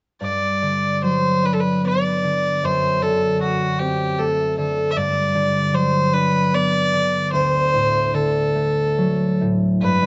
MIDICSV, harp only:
0, 0, Header, 1, 2, 480
1, 0, Start_track
1, 0, Key_signature, 1, "major"
1, 0, Tempo, 808625
1, 123, Time_signature, 3, 2, 24, 8
1, 1560, Tempo, 784314
1, 4440, Tempo, 826446
1, 6023, End_track
2, 0, Start_track
2, 0, Title_t, "Harp"
2, 0, Program_c, 0, 46
2, 123, Note_on_c, 0, 43, 40
2, 369, Note_on_c, 0, 50, 34
2, 614, Note_on_c, 0, 54, 34
2, 852, Note_on_c, 0, 62, 41
2, 1092, Note_on_c, 0, 59, 36
2, 1321, Note_off_c, 0, 50, 0
2, 1328, Note_on_c, 0, 50, 36
2, 1353, Note_off_c, 0, 54, 0
2, 1563, Note_on_c, 0, 42, 44
2, 1589, Note_off_c, 0, 43, 0
2, 1589, Note_off_c, 0, 50, 0
2, 1802, Note_on_c, 0, 50, 37
2, 2277, Note_on_c, 0, 60, 40
2, 2314, Note_off_c, 0, 59, 0
2, 2515, Note_on_c, 0, 57, 37
2, 2543, Note_off_c, 0, 62, 0
2, 2746, Note_off_c, 0, 50, 0
2, 2753, Note_on_c, 0, 50, 38
2, 2990, Note_on_c, 0, 43, 46
2, 3023, Note_off_c, 0, 42, 0
2, 3023, Note_off_c, 0, 50, 0
2, 3227, Note_on_c, 0, 50, 42
2, 3459, Note_on_c, 0, 54, 39
2, 3705, Note_on_c, 0, 62, 41
2, 3952, Note_on_c, 0, 59, 42
2, 3989, Note_off_c, 0, 60, 0
2, 4187, Note_off_c, 0, 50, 0
2, 4194, Note_on_c, 0, 50, 39
2, 4228, Note_off_c, 0, 54, 0
2, 4439, Note_on_c, 0, 38, 46
2, 4468, Note_off_c, 0, 43, 0
2, 4468, Note_off_c, 0, 50, 0
2, 4546, Note_off_c, 0, 57, 0
2, 4674, Note_on_c, 0, 45, 39
2, 4905, Note_on_c, 0, 50, 38
2, 4936, Note_off_c, 0, 45, 0
2, 5148, Note_on_c, 0, 57, 36
2, 5368, Note_off_c, 0, 62, 0
2, 5397, Note_on_c, 0, 54, 38
2, 5647, Note_on_c, 0, 45, 37
2, 5673, Note_off_c, 0, 50, 0
2, 5781, Note_off_c, 0, 59, 0
2, 5883, Note_on_c, 0, 43, 47
2, 5912, Note_off_c, 0, 38, 0
2, 5912, Note_off_c, 0, 45, 0
2, 5912, Note_off_c, 0, 54, 0
2, 6002, Note_on_c, 0, 50, 37
2, 6023, Note_off_c, 0, 43, 0
2, 6023, Note_off_c, 0, 50, 0
2, 6023, Note_off_c, 0, 57, 0
2, 6023, End_track
0, 0, End_of_file